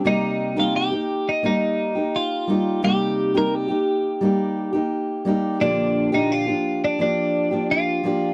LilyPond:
<<
  \new Staff \with { instrumentName = "Clean electric guitar" } { \time 4/4 \key c \minor \tempo 4 = 86 ees'8. f'16 g'8. ees'16 ees'4 f'4 | g'8. bes'16 g'2 r4 | d'8. ees'16 f'8. d'16 d'4 f'4 | }
  \new Staff \with { instrumentName = "Steel-string acoustic guitar" } { \time 4/4 \key c \minor <c g bes ees' g'>8. <c g bes ees' g'>8 <bes ees' g'>8. <g bes ees' g'>8. <bes ees' g'>8. <g bes ees' g'>8 | <c g bes ees' g'>8. <c g bes ees' g'>8 <bes ees' g'>8. <g bes ees' g'>8. <bes ees' g'>8. <g bes ees' g'>8 | <bes, d f bes d' g'>8. <bes, d f bes d' g'>8 <f bes d' g'>8. <f bes d' g'>8. <f bes d' g'>8. <f bes d' g'>8 | }
>>